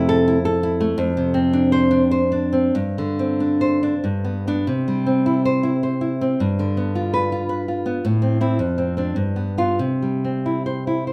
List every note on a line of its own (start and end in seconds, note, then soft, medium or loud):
0.00 0.93 F2 medium
0.00 0.37 C3 medium
0.00 0.54 A3 medium
0.00 0.26 E4 medium
0.09 0.38 A4 medium
0.28 0.62 E4 medium
0.45 0.98 A4 medium
0.63 0.98 E4 medium
0.80 0.98 A3 medium
0.98 2.70 F2 medium
1.17 2.01 C3 medium
1.34 2.20 C4 medium
1.53 1.90 D4 medium
1.72 2.03 C5 medium
1.91 2.31 D4 medium
2.11 2.75 C5 medium
2.32 2.75 D4 soft
2.53 2.75 C4 medium
2.75 4.00 G2 medium
2.98 3.94 D3 soft
3.19 4.04 C4 soft
3.40 3.82 D4 soft
3.61 3.95 C5 medium
3.83 4.04 D4 medium
4.04 4.65 G2 medium
4.25 4.46 B3 soft
4.47 4.66 B3 soft
4.47 4.66 D4 medium
4.67 6.35 C3 medium
4.88 5.73 G3 soft
5.06 5.92 C4 soft
5.26 5.45 E4 medium
5.45 5.75 C5 medium
5.63 6.00 E4 soft
5.83 6.39 C5 soft
6.01 6.39 E4 soft
6.21 6.39 C4 medium
6.40 8.01 G2 medium
6.59 7.41 D3 medium
6.77 7.59 B3 medium
6.95 7.31 F4 medium
7.14 7.42 B4 medium
7.32 7.67 F4 medium
7.49 8.04 B4 medium
7.68 8.04 F4 soft
7.86 8.04 B3 medium
8.05 8.58 A2 medium
8.22 8.39 C4 soft
8.41 8.57 C4 soft
8.41 8.57 E4 medium
8.59 9.14 F2 medium
8.78 8.96 C4 soft
8.97 9.14 C4 soft
8.97 9.15 D4 medium
9.16 9.78 G2 medium
9.36 9.57 B3 soft
9.58 9.78 B3 soft
9.58 9.78 F4 medium
9.79 11.13 C3 medium
10.02 10.98 G3 soft
10.25 11.13 C4 soft
10.46 10.66 E4 soft
10.66 10.87 C5 soft
10.87 11.07 E4 soft
11.07 11.13 C5 soft